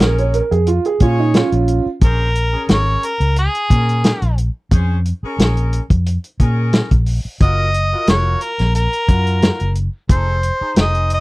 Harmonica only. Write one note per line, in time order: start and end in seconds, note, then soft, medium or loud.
2.04 2.66 A#4 medium
2.72 3.07 C#5 medium
3.05 3.38 A#4 medium
3.39 4.35 G#4 medium
7.42 8.05 D#5 loud
8.10 8.43 C#5 medium
8.42 8.74 A#4 medium
8.75 9.72 A#4 medium
10.11 10.74 C5 medium
10.80 11.10 D#5 medium
11.14 11.20 D#5 loud